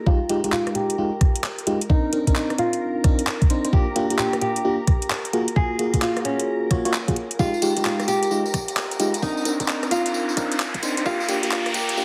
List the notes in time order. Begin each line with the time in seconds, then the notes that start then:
0.06 G#3 D#4 F4 G4 A#4 A#5, kick
0.29 G#3 D#4 F4 G4, closed hi-hat
0.44 G#3 D#4 F4 G4, closed hi-hat
0.52 F4, clap
0.67 cross-stick, closed hi-hat
0.75 G4, closed hi-hat
0.90 closed hi-hat
0.98 G#3 D#4 F4 G4
1.21 kick, cross-stick, closed hi-hat
1.36 closed hi-hat
1.44 clap
1.59 closed hi-hat
1.67 G#3 D#4 F4 G4, closed hi-hat
1.81 closed hi-hat
1.90 C4 D4 D#4 A#4, kick
2.13 C4 D4 D#4 A#4, closed hi-hat
2.27 C4 D4 D#4 A#4, kick, closed hi-hat
2.36 D#4, clap
2.50 cross-stick, closed hi-hat
2.58 F4, closed hi-hat
2.73 closed hi-hat
3.04 C4 D4 D#4 A#4, kick, cross-stick, closed hi-hat
3.19 closed hi-hat
3.27 clap
3.42 kick, closed hi-hat
3.50 C4 D4 D#4 C5, closed hi-hat
3.65 C4 D4 D#4 C5, closed hi-hat
3.73 A#3 D4 F4 G4, kick
3.96 A#3 D4 F4 G4, closed hi-hat
4.10 A#3 D4 F4 G4, closed hi-hat
4.19 G4, clap
4.33 cross-stick, closed hi-hat
4.42 G4, closed hi-hat
4.56 closed hi-hat
4.65 A#3 D4 F4 G4
4.87 kick, cross-stick, closed hi-hat
5.02 closed hi-hat
5.10 clap
5.25 closed hi-hat
5.33 A#3 F4 F#4 G#4, closed hi-hat
5.48 closed hi-hat
5.56 A#3 F4 F#4 G#4, kick
5.79 A#3 F4 F#4 G#4, closed hi-hat
5.93 A#3 F4 F#4 G#4, kick, closed hi-hat
6.02 F4, clap
6.17 cross-stick, closed hi-hat
6.25 C#4, closed hi-hat
6.40 closed hi-hat
6.71 A#3 F4 F#4 C#5, kick, cross-stick, closed hi-hat
6.85 A#3 F4 F#4 C#5, closed hi-hat
6.94 clap
7.08 A#3 F4 F#4 G#4, kick, closed hi-hat
7.16 closed hi-hat
7.31 closed hi-hat
7.39 G#3 D#4 F4 G4 A#4 A#5, kick, tambourine, riser
7.54 tambourine
7.62 G#3 D#4 F4 G4, closed hi-hat, tambourine
7.77 G#3 D#4 F4 G4, closed hi-hat, tambourine
7.85 F4, clap, tambourine
8.00 cross-stick, closed hi-hat, tambourine
8.08 G4, closed hi-hat, tambourine
8.23 closed hi-hat, tambourine
8.31 G#3 D#4 F4 G4, tambourine
8.46 tambourine
8.54 kick, cross-stick, closed hi-hat, tambourine
8.68 closed hi-hat, tambourine
8.77 clap, tambourine
8.91 closed hi-hat, tambourine
9.00 G#3 D#4 F4 G4, closed hi-hat, tambourine
9.14 closed hi-hat, tambourine
9.22 C4 D4 D#4 A#4, kick, tambourine
9.37 tambourine
9.45 C4 D4 D#4 A#4, closed hi-hat, tambourine
9.60 C4 D4 D#4 A#4, kick, closed hi-hat, tambourine
9.68 D#4, clap, tambourine
9.83 cross-stick, closed hi-hat, tambourine
9.91 F4, closed hi-hat, tambourine
10.06 closed hi-hat, tambourine
10.14 tambourine
10.29 tambourine
10.37 C4 D4 D#4 A#4, kick, cross-stick, closed hi-hat, tambourine
10.52 closed hi-hat, tambourine
10.60 clap, tambourine
10.74 kick, closed hi-hat, tambourine
10.83 C4 D4 D#4 C5, closed hi-hat, tambourine
10.97 C4 D4 D#4 C5, closed hi-hat, tambourine
11.06 A#3 D4 F4 G4, kick, tambourine
11.20 tambourine
11.29 A#3 D4 F4 G4, closed hi-hat, tambourine
11.43 A#3 D4 F4 G4, closed hi-hat, tambourine
11.51 F4, clap, tambourine
11.66 cross-stick, closed hi-hat, tambourine
11.74 G4, closed hi-hat, tambourine
11.89 closed hi-hat, tambourine
11.97 A#3 D4 F4 G4, tambourine